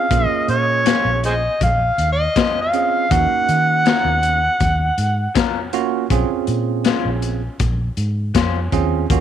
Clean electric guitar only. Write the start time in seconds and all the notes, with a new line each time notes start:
0.85 G#3 C#4 F4 C5
2.36 G#3 C#4 F4 C5
3.85 F#3 C#4 F4 A#4
5.35 F#3 C#4 F4 A#4
6.85 G#3 C#4 F4 C5
8.34 G#3 C#4 F4 C5